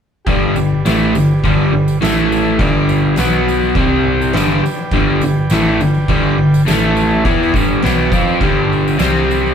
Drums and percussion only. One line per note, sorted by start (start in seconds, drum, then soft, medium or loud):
0.27 kick loud
0.27 tambourine soft
0.27 crash medium
0.56 tambourine medium
0.86 snare loud
0.86 tambourine loud
0.86 crash medium
1.15 tambourine medium
1.31 tambourine soft
1.44 kick medium
1.44 tambourine soft
1.44 crash medium
1.88 tambourine medium
2.02 snare loud
2.02 tambourine loud
2.02 crash medium
2.19 tambourine soft
2.32 tambourine medium
2.59 kick loud
2.59 tambourine soft
2.59 crash medium
2.89 tambourine medium
3.16 snare loud
3.16 tambourine loud
3.16 crash soft
3.35 tambourine soft
3.49 tambourine medium
3.64 tambourine soft
3.75 kick loud
3.75 tambourine soft
3.75 crash medium
4.22 tambourine medium
4.33 snare loud
4.33 tambourine loud
4.33 crash medium
4.51 tambourine soft
4.66 tambourine medium
4.92 kick loud
4.92 tambourine soft
4.92 crash medium
5.21 tambourine medium
5.50 snare loud
5.50 tambourine loud
5.50 crash medium
5.65 tambourine soft
5.80 tambourine medium
5.94 tambourine soft
6.08 kick loud
6.08 tambourine soft
6.08 crash medium
6.54 tambourine medium
6.67 snare loud
6.67 tambourine loud
6.67 crash medium
6.97 tambourine medium
7.25 kick loud
7.25 tambourine soft
7.25 crash medium
7.43 tambourine soft
7.54 kick loud
7.54 tambourine medium
7.72 tambourine soft
7.82 snare loud
7.82 tambourine medium
7.82 crash medium
8.12 kick loud
8.12 tambourine medium
8.41 kick loud
8.41 tambourine soft
8.41 crash medium
8.72 tambourine soft
8.88 tambourine medium
8.99 snare loud
8.99 tambourine loud
8.99 crash medium
9.31 tambourine medium
9.46 tambourine soft